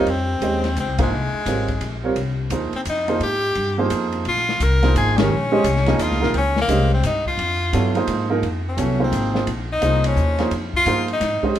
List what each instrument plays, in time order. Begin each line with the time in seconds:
Already playing: tenor saxophone D#4
0.06 upright bass F2, tenor saxophone C4, ride
0.40 upright bass D#2, grand piano G#3 C#4 G4 C5 D#5, hi-hat pedal, ride
0.64 snare, ride
0.75 upright bass C#2, hi-hat pedal, ride
0.80 tenor saxophone C4
0.88 upright bass C2
0.98 upright bass G#1, grand piano F3 A#3 D#4 G#4 C5, kick, ride
1.03 tenor saxophone G#3
1.11 upright bass C2
1.33 muted upright bass stroke
1.46 upright bass G#1, grand piano G3 C4 F4 A#4 C#5, snare, hi-hat pedal, ride
1.68 kick, ride
1.81 upright bass A#1, ride
2.04 grand piano G3 C4 F4 A#4 C#5
2.16 upright bass C2, ride
2.50 upright bass D#2, grand piano F3 A#3 D#4 G#4 C5, hi-hat pedal, ride
2.72 tenor saxophone C4, muted upright bass stroke, ride
2.85 upright bass F2, hi-hat pedal, ride
2.90 tenor saxophone D#4
3.08 grand piano F3 A#3 D#4 G#4 C5, ride
3.20 upright bass G#2, tenor saxophone G4, ride
3.55 upright bass G2, ride
3.78 grand piano F3 A#3 D#4 G#4 C5
3.90 upright bass F2, hi-hat pedal, ride
4.12 ride
4.25 upright bass A#1, tenor saxophone F4, ride
4.37 snare
4.49 snare
4.60 upright bass C2, tenor saxophone A#4, hi-hat pedal, ride
4.82 grand piano F3 A#3 D#4 G#4 C5, snare, ride
4.95 upright bass G#1, tenor saxophone G#4, hi-hat pedal, ride
5.17 grand piano D#3 G#3 C#4 G4 A#4, tenor saxophone C#4, snare, ride
5.30 upright bass A#1
5.52 grand piano G#3 C#4 G4 C5 D#5
5.64 upright bass C2, hi-hat pedal, ride
5.76 snare
5.86 grand piano F3 A#3 D#4 G#4 D#5, snare, ride
5.99 upright bass D#2, tenor saxophone F4, hi-hat pedal, ride
6.11 upright bass C#2, snare
6.21 upright bass A#1, grand piano F3 A#3 D#4 G#4 A#4, snare
6.34 upright bass C#2, tenor saxophone C4 C#4, ride
6.56 snare
6.61 tenor saxophone A#3
6.68 upright bass C2, grand piano G#3 C#4 G4 C5 D#5, hi-hat pedal, ride
6.94 tenor saxophone C4
7.03 upright bass G2, tenor saxophone D#4, hi-hat pedal, ride
7.26 tenor saxophone F4, kick
7.38 upright bass F2, ride
7.73 upright bass G2, grand piano F#3 B3 E4 A4 C#5, hi-hat pedal, ride
7.95 grand piano F3 A#3 D#4 G#4 C5, ride
8.07 upright bass G#2, ride
8.29 grand piano F3 A#3 D#4 G#4 A#4
8.43 upright bass F2, ride
8.69 tenor saxophone C#4
8.77 upright bass C2, grand piano F#3 B3 E4 A4 C#5, hi-hat pedal, ride
8.99 grand piano F3 A#3 D#4 G#4 C5
9.04 tenor saxophone C4
9.12 upright bass G#1, hi-hat pedal, ride
9.34 grand piano F3 A#3 D#4 G#4 C5, snare
9.47 upright bass A#1, ride
9.72 tenor saxophone D#4
9.81 upright bass C2, grand piano F3 A#3 D#4 G#4 C5, hi-hat pedal, ride
10.04 tenor saxophone C#4, ride
10.16 upright bass D#2, hi-hat pedal
10.38 grand piano F3 A#3 D#4 G#4 C5, snare, ride
10.51 upright bass F2, ride
10.74 tenor saxophone F4, kick
10.85 upright bass G2, grand piano F3 A#3 D#4 G#4 C5, hi-hat pedal, ride
11.08 ride
11.13 tenor saxophone D#4
11.20 upright bass G#2, snare, hi-hat pedal, ride
11.43 grand piano G#3 C#4 G4 C5 D#5, muted upright bass stroke, kick
11.55 upright bass F2, ride